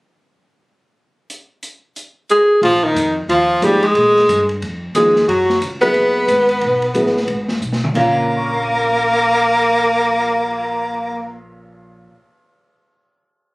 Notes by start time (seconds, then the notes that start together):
1.30 closed hi-hat
1.63 closed hi-hat
1.96 closed hi-hat
2.29 G#4, closed hi-hat
2.62 A#1 F3 F4, ride
2.84 D#3 D#4
2.94 F2, hi-hat pedal, ride
3.28 D#2 F3 F4, ride
3.62 G#2 F3 G3 A#3 D#4 G4 G#4, hi-hat pedal, ride
3.83 G#3, ride
3.87 G#4
3.95 A#2, ride
4.17 snare
4.28 G2, hi-hat pedal, ride
4.49 ride
4.62 F2, ride
4.95 D#2 F3 G#3 A#3 D#4 G#4, hi-hat pedal, ride
5.16 snare
5.28 F#2 F#3 F#4, ride
5.50 snare
5.61 C#2, hi-hat pedal, ride
5.81 F#3 B3 E4 G#4 B4, ride
5.94 F#1, ride
6.28 G#1, hi-hat pedal, ride
6.49 ride
6.61 B1, ride
6.82 ride
6.94 A1 F#3 B3 E4 G#4, hi-hat pedal, ride
7.06 snare
7.17 snare
7.27 G#1, ride
7.49 snare
7.60 B1, hi-hat pedal
7.72 snare
7.84 mid tom
7.94 A#1 A#2 A#3 C#4 F4 A#4 F5, kick, crash
8.16 cymbal swell
8.29 A#5
8.37 C#6
8.45 F6
8.54 C7
8.64 D#7